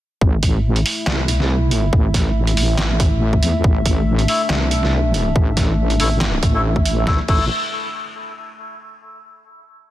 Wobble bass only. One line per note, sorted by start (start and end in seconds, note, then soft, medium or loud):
0.21 0.84 A1 loud
1.07 1.91 C2 medium
1.93 2.55 A1 loud
2.57 3.41 A1 loud
3.42 3.62 E2 loud
3.64 4.27 A1 loud
4.50 5.34 C2 loud
5.36 5.98 A1 loud
6.00 6.41 A1 loud
6.43 7.05 A1 loud
7.07 7.20 A1 loud
7.29 7.48 A1 loud